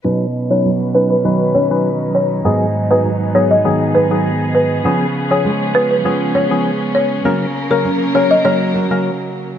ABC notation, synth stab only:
X:1
M:4/4
L:1/16
Q:1/4=100
K:B
V:1 name="Synth stab"
[F,CDB] z2 [F,CDB] z2 [F,CDB] z [F,CDB]3 [F,CDB] z4 | [F,B,DG] z2 [F,B,DG] z2 [F,B,DG] z [F,B,DG]3 [F,B,DG] z4 | [^E,B,CG] z2 [E,B,CG] z2 [E,B,CG] z [E,B,CG]3 [E,B,CG] z4 | [C,F,A,CA] z2 [C,F,A,CA] z2 [C,F,A,CA] z [C,F,A,CA]3 [C,F,A,CA] z4 |]